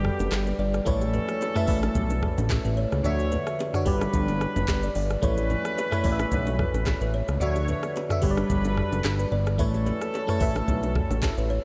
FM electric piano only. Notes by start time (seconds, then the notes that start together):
Already playing: G3 G4 B4 D5
0.85 A3 E4 B4 C#5
1.55 A3 E4 B4 E5
1.67 A3 E4 B4 D5
1.76 E5
3.03 D3 D4 F#4 E5
3.73 D3 D4 F#4 C#5
3.85 G3 G4 B4 D5
5.22 A3 E4 B4 C#5
5.91 A3 E4 B4 C#5
6.03 A3 E4 B4 D5
6.12 E5
7.40 D3 D4 F#4 E5
8.09 D3 D4 F#4 E5
8.22 G3 G4 B4 C#5
8.31 D5
9.58 A3 E4 B4 C#5
10.27 A3 E4 B4 C#5
10.40 A3 E4 B4 E5